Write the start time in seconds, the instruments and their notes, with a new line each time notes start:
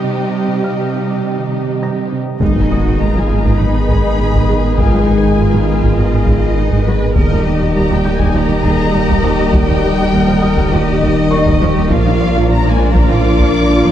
Already playing: viola section C3 G3, cello section C3, analog synth pad C3 G3 G4 D#5, violin section D#4 G4
0.03 synth pluck C3, violin section D#5
0.18 synth pluck G3
0.48 synth pluck C3
0.63 synth pluck C4, felt piano F5 F6
0.78 synth pluck G3
0.92 synth pluck C3
1.08 synth pluck G3
1.23 synth pluck C3
1.38 synth pluck D#3
1.53 synth pluck C4
1.68 synth pluck C3
1.82 synth pluck G3, felt piano A#5 A#6
1.97 synth pluck C4
2.13 synth pluck C3
2.27 synth pluck C4
2.39 sub bass G#1, double bass section G#1, french horn section D#3, trombone section D#3 G#3, analog synth pad D#3 G#3 G#4 D#5, viola section G#3 D#4, synth pluck G#3, cello section D#4, violin section G#4 B4 D#5, taiko, impact
2.55 double bass section G#1, viola section F#3, synth pluck B3
2.70 double bass section G#1, viola section G#3, cello section F#4, synth pluck G#4, felt piano D#5 D#6
2.85 double bass section G#1, viola section D#3, synth pluck D#4
2.99 double bass section G#1, viola section G#3, synth pluck G#3, french horn section A#3, cello section F4, violin section A#5
3.15 double bass section G#1, viola section F#3, synth pluck B3
3.19 french horn section G#3, violin section G#5
3.29 double bass section G#1, viola section G#3, synth pluck B3
3.38 french horn section A#3, violin section A#5
3.44 double bass section G#1, viola section G#3, synth pluck G#3, taiko
3.57 double bass section G#1, viola section F#3, french horn section B3, synth pluck B3, cello section D#4, violin section B5
3.74 double bass section G#1, viola section G#3, synth pluck B3
3.89 double bass section G#1, synth pluck G#3, viola section G#3, taiko
4.18 double bass section G#1, viola section G#3, synth pluck B3, cello section G#4
4.33 double bass section G#1, synth pluck G#3, viola section G#3, taiko
4.49 double bass section G#1, viola section F#3, synth pluck G#4
4.63 double bass section G#1, viola section G#3, synth pluck B3
4.77 double bass section G#1, french horn section G#3, synth pluck G#3, viola section G#3, cello section F4, violin section G#5, taiko
4.93 double bass section G#1, viola section F#3, synth pluck B3
5.07 double bass section G#1, viola section G#3, cello section D#4, synth pluck G#4
5.22 double bass section G#1, viola section D#3, synth pluck D#4
5.37 double bass section G#1, viola section G#3, synth pluck G#3, cello section F4
5.53 double bass section G#1, viola section F#3, synth pluck B3
5.68 double bass section G#1, viola section G#3, synth pluck B3
5.82 double bass section G#1, synth pluck G#3, viola section G#3, taiko
5.96 double bass section G#1, french horn section D#3, viola section F#3, synth pluck B3, violin section D#5
6.12 double bass section G#1, viola section G#3, synth pluck B3
6.26 double bass section G#1, viola section G#3, synth pluck G#3, taiko
6.56 double bass section G#1, viola section G#3, synth pluck B3, cello section D#4
6.71 double bass section G#1, viola section G#3, synth pluck G#3, taiko
6.85 double bass section G#1, viola section F#3, synth pluck G#4, cello section B4
7.01 double bass section G#1, viola section G#3, synth pluck B3
7.15 sub bass D#1, double bass section D#2, french horn section D#3, analog synth pad D#3 A#3 G4 D#5, synth pluck D#3, trombone section D#3 G3, viola section G3 D#4, violin section A#4 D#5, cello section A#4, taiko
7.31 double bass section D#2, viola section F3, synth pluck G3
7.45 double bass section D#2, viola section G3, synth pluck D#4, cello section G4
7.60 double bass section D#2, viola section D#3
7.74 double bass section D#2, synth pluck D#3, viola section G3, french horn section A#3, violin section A#5
7.90 double bass section D#2, viola section F3, synth pluck G3, french horn section G3
7.95 violin section G5
8.04 double bass section D#2, viola section G3, synth pluck G3, felt piano G6
8.14 french horn section G#3, violin section G#5
8.18 double bass section D#2, synth pluck D#3, viola section G3, taiko
8.34 double bass section D#2, viola section F3, synth pluck G3, french horn section A#3, cello section G4, violin section A#5
8.49 double bass section D#2, viola section G3, synth pluck G3
8.63 double bass section D#2, synth pluck D#3, viola section G3, cello section G#4, taiko
8.92 double bass section D#2, viola section G3, synth pluck G3, cello section G4
9.08 double bass section D#2, synth pluck D#3, viola section G3, taiko
9.23 double bass section D#2, viola section F3, synth pluck D#4
9.38 double bass section D#2, viola section G3, synth pluck G3
9.52 double bass section D#2, synth pluck D#3, viola section G3, french horn section G3, violin section G5, taiko
9.67 double bass section D#2, viola section F3, synth pluck G3
9.81 double bass section D#2, viola section G3, synth pluck D#4
9.95 viola section D#3, synth pluck A#3
9.99 double bass section D#2
10.11 double bass section D#2, synth pluck D#3, viola section G3, cello section A#4
10.26 double bass section D#2, viola section F3, synth pluck G3
10.42 double bass section D#2, viola section G3, synth pluck G3, felt piano D#6
10.57 double bass section D#2, viola section G3, taiko
10.71 double bass section D#2, french horn section D#3, viola section F3, synth pluck G3, cello section G4, violin section D#5
10.86 double bass section D#2, viola section G3
11.01 double bass section D#2, synth pluck D#3, viola section G3, taiko
11.31 double bass section D#2, viola section G3, synth pluck G3, cello section D#4, felt piano A#4 C#6
11.46 double bass section D#2, synth pluck D#3, viola section G3, taiko
11.61 double bass section D#2, viola section F3, synth pluck D#4, cello section G4
11.74 double bass section D#2, viola section G3, synth pluck G3
11.90 sub bass A#1, double bass section A#1, viola section F3 F4, analog synth pad F3 A#3 F4 D5, french horn section F3, trombone section F3 A#3, synth pluck A#3, cello section F4, violin section A#4 D5 F5, taiko
12.05 double bass section A#1, viola section D#3, synth pluck D4
12.20 double bass section A#1, viola section F3, synth pluck A#4
12.34 double bass section A#1, viola section D3, synth pluck F4
12.48 double bass section A#1, viola section F3, synth pluck A#3, cello section D4, violin section A#5
12.52 french horn section A#3
12.64 double bass section A#1, viola section D#3, synth pluck D4
12.70 french horn section G#3, violin section G#5
12.79 double bass section A#1, viola section F3, synth pluck D4
12.91 viola section F3, french horn section A#3, violin section A#5
12.95 double bass section A#1, synth pluck A#3, taiko
13.08 double bass section A#1, viola section D#3, french horn section D4, synth pluck D4, cello section F4, violin section D6
13.24 double bass section A#1, viola section F3, synth pluck D4
13.39 double bass section A#1, viola section F3, synth pluck A#3, taiko
13.68 double bass section A#1, viola section F3, synth pluck D4, cello section F4
13.83 double bass section A#1, viola section F3, synth pluck A#3, taiko